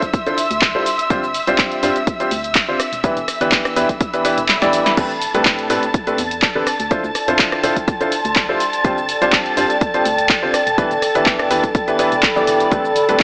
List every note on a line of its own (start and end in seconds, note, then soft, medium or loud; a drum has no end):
0.00 4.98 E5 medium
0.00 2.80 C6 medium
0.00 4.98 E6 medium
0.00 kick medium
0.00 closed hi-hat soft
0.00 shaker soft
0.13 kick loud
0.13 closed hi-hat medium
0.13 shaker soft
0.26 0.37 D3 medium
0.26 0.37 D4 medium
0.26 0.37 E4 medium
0.26 0.37 F4 medium
0.26 0.37 A4 medium
0.26 0.37 C5 medium
0.26 closed hi-hat soft
0.26 shaker soft
0.38 open hi-hat loud
0.38 shaker medium
0.51 0.80 D2 loud
0.51 closed hi-hat medium
0.51 shaker soft
0.62 kick loud
0.62 clap loud
0.62 closed hi-hat medium
0.62 shaker soft
0.75 0.85 G3 medium
0.75 0.85 D4 medium
0.75 0.85 E4 medium
0.75 0.85 F4 medium
0.75 0.85 A4 medium
0.75 0.85 C5 medium
0.86 open hi-hat medium
0.86 shaker medium
0.99 closed hi-hat medium
0.99 shaker soft
1.10 1.40 G1 loud
1.10 1.22 G3 medium
1.10 1.22 C4 medium
1.10 1.22 D4 medium
1.10 1.22 F4 medium
1.10 1.22 G4 medium
1.10 1.22 C5 medium
1.10 kick loud
1.10 closed hi-hat medium
1.10 shaker medium
1.24 shaker soft
1.34 open hi-hat loud
1.34 shaker medium
1.47 1.55 C2 loud
1.47 1.80 G3 medium
1.47 1.80 C4 medium
1.47 1.80 D4 medium
1.47 1.80 F4 medium
1.47 1.80 G4 medium
1.47 1.80 C5 loud
1.47 closed hi-hat medium
1.47 shaker soft
1.58 kick loud
1.58 clap loud
1.58 closed hi-hat medium
1.58 shaker soft
1.72 closed hi-hat soft
1.83 1.91 G2 medium
1.83 1.95 G3 medium
1.83 1.95 C4 medium
1.83 1.95 D4 medium
1.83 1.95 F4 medium
1.83 1.95 G4 medium
1.83 1.95 C5 loud
1.83 open hi-hat medium
1.83 shaker medium
1.96 closed hi-hat medium
1.96 shaker soft
2.07 kick loud
2.07 closed hi-hat medium
2.07 shaker soft
2.20 2.30 G3 medium
2.20 2.30 C4 medium
2.20 2.30 D4 medium
2.20 2.30 F4 medium
2.20 2.30 G4 medium
2.20 2.30 C5 medium
2.20 closed hi-hat soft
2.20 shaker soft
2.31 2.61 D2 loud
2.31 open hi-hat loud
2.31 shaker medium
2.44 closed hi-hat medium
2.44 shaker soft
2.55 kick loud
2.55 clap loud
2.55 closed hi-hat medium
2.55 shaker soft
2.68 2.76 G1 medium
2.68 2.78 C4 medium
2.68 2.78 D4 medium
2.68 2.78 F4 medium
2.68 2.78 G4 medium
2.68 2.78 C5 medium
2.80 13.23 A4 medium
2.80 cross-stick medium
2.80 open hi-hat medium
2.80 shaker medium
2.93 3.08 E1 medium
2.93 closed hi-hat medium
2.93 shaker soft
3.04 3.15 E3 medium
3.04 3.15 B3 medium
3.04 3.15 D4 medium
3.04 3.15 E4 medium
3.04 3.15 G4 medium
3.04 3.15 B4 medium
3.04 kick loud
3.04 closed hi-hat medium
3.04 shaker soft
3.17 3.24 E1 loud
3.17 closed hi-hat soft
3.17 shaker soft
3.28 cross-stick medium
3.28 open hi-hat loud
3.28 shaker medium
3.41 3.48 G1 loud
3.41 3.74 E3 medium
3.41 3.74 B3 medium
3.41 3.74 D4 medium
3.41 3.74 E4 medium
3.41 3.74 G4 medium
3.41 3.74 B4 medium
3.41 closed hi-hat medium
3.41 shaker soft
3.52 kick loud
3.52 clap loud
3.52 closed hi-hat medium
3.52 shaker soft
3.62 6.67 B5 medium
3.62 cross-stick medium
3.62 closed hi-hat soft
3.62 shaker soft
3.76 3.85 E2 medium
3.76 3.88 E3 medium
3.76 3.88 B3 medium
3.76 3.88 D4 medium
3.76 3.88 E4 medium
3.76 3.88 G4 medium
3.76 3.88 B4 loud
3.76 open hi-hat medium
3.76 shaker medium
3.89 kick medium
3.89 closed hi-hat medium
3.89 shaker soft
4.01 kick loud
4.01 closed hi-hat medium
4.01 shaker soft
4.14 4.23 E3 medium
4.14 4.23 B3 medium
4.14 4.23 D4 medium
4.14 4.23 E4 medium
4.14 4.23 G4 medium
4.14 4.23 B4 medium
4.14 closed hi-hat soft
4.14 shaker soft
4.25 4.36 E3 loud
4.25 4.36 B3 medium
4.25 4.36 D4 medium
4.25 4.36 E4 medium
4.25 4.36 G4 medium
4.25 4.36 B4 loud
4.25 open hi-hat loud
4.25 shaker medium
4.38 4.61 E1 loud
4.38 closed hi-hat medium
4.38 shaker soft
4.49 snare medium
4.49 clap loud
4.49 closed hi-hat medium
4.49 shaker soft
4.62 4.69 D1 medium
4.62 4.95 E3 medium
4.62 4.95 B3 medium
4.62 4.95 D4 medium
4.62 4.95 E4 medium
4.62 4.95 G4 medium
4.62 4.95 D5 loud
4.62 snare medium
4.62 closed hi-hat soft
4.62 shaker soft
4.73 4.82 A1 medium
4.73 open hi-hat medium
4.73 shaker medium
4.86 snare medium
4.86 closed hi-hat medium
4.86 shaker soft
4.97 5.27 A1 loud
4.97 5.09 A2 medium
4.97 5.09 C4 medium
4.97 5.09 D4 medium
4.97 5.09 G4 medium
4.97 5.09 A4 medium
4.97 5.09 B4 medium
4.97 13.23 A5 medium
4.97 13.23 A6 medium
4.97 kick loud
4.97 closed hi-hat medium
4.97 crash medium
4.97 shaker soft
5.07 13.23 D5 loud
5.07 shaker soft
5.22 open hi-hat loud
5.22 shaker medium
5.34 5.42 C2 loud
5.34 5.67 A2 medium
5.34 5.67 C4 medium
5.34 5.67 D4 medium
5.34 5.67 G4 medium
5.34 5.67 A4 medium
5.34 5.67 B4 medium
5.34 closed hi-hat medium
5.34 shaker soft
5.45 kick loud
5.45 clap loud
5.45 closed hi-hat medium
5.45 shaker soft
5.59 closed hi-hat soft
5.70 5.78 A2 medium
5.70 5.82 A2 medium
5.70 5.82 C4 medium
5.70 5.82 D4 medium
5.70 5.82 G4 medium
5.70 5.82 A4 medium
5.70 5.82 B4 loud
5.70 open hi-hat medium
5.70 shaker medium
5.83 closed hi-hat medium
5.83 shaker soft
5.94 kick loud
5.94 closed hi-hat medium
5.94 shaker soft
6.07 6.17 A2 medium
6.07 6.17 C4 medium
6.07 6.17 D4 medium
6.07 6.17 G4 medium
6.07 6.17 A4 medium
6.07 6.17 B4 medium
6.07 closed hi-hat soft
6.07 shaker soft
6.18 6.48 E2 loud
6.18 open hi-hat loud
6.18 shaker medium
6.31 closed hi-hat medium
6.31 shaker soft
6.42 kick loud
6.42 clap loud
6.42 closed hi-hat medium
6.42 shaker soft
6.55 6.63 A1 medium
6.55 6.65 D3 medium
6.55 6.65 C4 medium
6.55 6.65 D4 medium
6.55 6.65 G4 medium
6.55 6.65 A4 medium
6.55 6.65 B4 medium
6.67 cross-stick medium
6.67 open hi-hat medium
6.67 shaker medium
6.80 6.95 D2 medium
6.80 13.23 G5 loud
6.80 closed hi-hat medium
6.80 shaker soft
6.91 7.03 D3 medium
6.91 7.03 D4 medium
6.91 7.03 E4 medium
6.91 7.03 F4 medium
6.91 7.03 A4 medium
6.91 7.03 C5 medium
6.91 kick loud
6.91 closed hi-hat medium
6.91 shaker soft
7.04 7.11 D2 loud
7.04 shaker soft
7.15 cross-stick medium
7.15 open hi-hat loud
7.15 shaker medium
7.28 7.35 F2 loud
7.28 7.61 D3 medium
7.28 7.61 D4 medium
7.28 7.61 E4 medium
7.28 7.61 F4 medium
7.28 7.61 A4 medium
7.28 7.61 C5 medium
7.28 closed hi-hat medium
7.28 shaker soft
7.39 kick loud
7.39 clap loud
7.39 closed hi-hat medium
7.39 shaker soft
7.52 10.54 C6 medium
7.52 cross-stick medium
7.52 closed hi-hat soft
7.63 7.72 D1 medium
7.63 7.75 D3 medium
7.63 7.75 D4 medium
7.63 7.75 E4 medium
7.63 7.75 F4 medium
7.63 7.75 A4 medium
7.63 7.75 C5 loud
7.63 open hi-hat loud
7.63 shaker medium
7.76 kick medium
7.76 closed hi-hat medium
7.76 shaker soft
7.88 kick loud
7.88 closed hi-hat medium
7.88 shaker soft
8.01 8.11 D3 medium
8.01 8.11 D4 medium
8.01 8.11 E4 medium
8.01 8.11 F4 medium
8.01 8.11 A4 medium
8.01 8.11 C5 medium
8.01 closed hi-hat soft
8.01 shaker soft
8.12 open hi-hat loud
8.12 shaker medium
8.25 8.54 D2 loud
8.25 closed hi-hat medium
8.25 shaker soft
8.36 kick loud
8.36 clap loud
8.36 closed hi-hat medium
8.36 shaker soft
8.49 8.59 G3 medium
8.49 8.59 D4 medium
8.49 8.59 E4 medium
8.49 8.59 F4 medium
8.49 8.59 A4 medium
8.49 8.59 C5 medium
8.60 open hi-hat loud
8.60 shaker medium
8.73 closed hi-hat medium
8.73 shaker soft
8.84 9.15 G1 loud
8.84 8.96 G3 medium
8.84 8.96 C4 medium
8.84 8.96 D4 medium
8.84 8.96 F4 medium
8.84 8.96 G4 medium
8.84 8.96 C5 medium
8.84 kick loud
8.84 closed hi-hat medium
8.84 shaker soft
8.98 shaker soft
9.09 open hi-hat loud
9.09 shaker medium
9.22 9.29 C2 loud
9.22 9.54 G3 medium
9.22 9.54 C4 medium
9.22 9.54 D4 medium
9.22 9.54 F4 medium
9.22 9.54 G4 medium
9.22 9.54 C5 medium
9.22 closed hi-hat medium
9.22 shaker soft
9.32 kick loud
9.32 clap loud
9.32 closed hi-hat medium
9.32 shaker soft
9.46 closed hi-hat soft
9.57 9.66 G2 medium
9.57 9.69 G3 medium
9.57 9.69 C4 medium
9.57 9.69 D4 medium
9.57 9.69 F4 medium
9.57 9.69 G4 medium
9.57 9.69 C5 loud
9.57 open hi-hat loud
9.57 shaker medium
9.70 closed hi-hat soft
9.70 shaker soft
9.81 kick loud
9.81 closed hi-hat medium
9.81 shaker soft
9.94 10.04 G3 medium
9.94 10.04 C4 medium
9.94 10.04 D4 medium
9.94 10.04 F4 medium
9.94 10.04 G4 medium
9.94 10.04 C5 medium
9.94 closed hi-hat soft
9.94 shaker soft
10.05 10.36 D2 loud
10.05 open hi-hat loud
10.05 shaker medium
10.18 closed hi-hat medium
10.18 shaker soft
10.29 kick loud
10.29 clap loud
10.29 closed hi-hat medium
10.29 shaker soft
10.43 10.50 G1 medium
10.43 10.53 C4 medium
10.43 10.53 D4 medium
10.43 10.52 F4 medium
10.43 10.52 G4 medium
10.43 10.52 C5 medium
10.54 cross-stick medium
10.54 open hi-hat loud
10.54 shaker medium
10.67 10.82 E1 medium
10.67 closed hi-hat medium
10.67 shaker soft
10.78 10.90 E3 medium
10.78 10.90 B3 medium
10.78 10.90 D4 medium
10.78 10.90 E4 medium
10.78 10.90 G4 medium
10.78 10.90 B4 medium
10.78 kick loud
10.78 closed hi-hat medium
10.78 shaker soft
10.91 10.98 E1 loud
10.91 closed hi-hat soft
10.91 shaker soft
11.02 cross-stick medium
11.02 open hi-hat loud
11.02 shaker medium
11.15 11.23 G1 loud
11.15 11.48 E3 medium
11.15 11.48 B3 medium
11.15 11.48 D4 medium
11.15 11.48 E4 medium
11.15 11.48 G4 medium
11.15 11.48 B4 medium
11.15 closed hi-hat medium
11.15 shaker soft
11.26 kick loud
11.26 clap loud
11.26 closed hi-hat medium
11.26 shaker soft
11.39 cross-stick medium
11.39 closed hi-hat soft
11.46 13.23 B5 medium
11.51 11.59 E2 medium
11.51 11.62 E3 medium
11.51 11.62 B3 medium
11.51 11.62 D4 medium
11.51 11.62 E4 medium
11.51 11.62 G4 medium
11.51 11.62 B4 loud
11.51 open hi-hat loud
11.51 shaker medium
11.64 kick medium
11.64 closed hi-hat soft
11.64 shaker soft
11.75 kick loud
11.75 closed hi-hat medium
11.75 shaker soft
11.88 11.97 E3 medium
11.88 11.97 B3 medium
11.88 11.97 D4 medium
11.88 11.97 E4 medium
11.88 11.97 G4 medium
11.88 11.97 B4 medium
11.88 closed hi-hat soft
11.88 shaker soft
11.99 12.11 E3 loud
11.99 12.11 B3 medium
11.99 12.11 D4 medium
11.99 12.11 E4 loud
11.99 12.11 G4 medium
11.99 12.11 B4 loud
11.99 open hi-hat loud
11.99 shaker medium
12.12 12.36 E1 loud
12.12 closed hi-hat medium
12.12 shaker soft
12.23 kick loud
12.23 clap loud
12.23 closed hi-hat medium
12.23 shaker soft
12.36 12.44 B1 loud
12.36 12.69 E3 medium
12.36 12.69 B3 medium
12.36 12.69 D4 medium
12.36 12.69 E4 medium
12.36 12.69 G4 medium
12.36 12.69 D5 loud
12.36 shaker soft
12.47 12.64 E1 medium
12.47 open hi-hat loud
12.47 shaker medium
12.60 closed hi-hat medium
12.60 shaker soft
12.72 13.02 A1 loud
12.72 12.83 A2 medium
12.72 12.83 C4 medium
12.72 12.83 D4 medium
12.72 12.83 G4 medium
12.72 12.83 A4 medium
12.72 12.83 B4 medium
12.72 kick loud
12.72 closed hi-hat medium
12.72 shaker soft
12.85 shaker soft
12.96 open hi-hat loud
12.96 shaker medium
13.09 13.16 C2 loud
13.09 13.23 A2 medium
13.09 13.23 C4 medium
13.09 13.23 D4 medium
13.09 13.23 G4 medium
13.09 13.23 A4 medium
13.09 13.23 B4 medium
13.09 closed hi-hat soft
13.09 shaker soft
13.20 kick loud
13.20 clap loud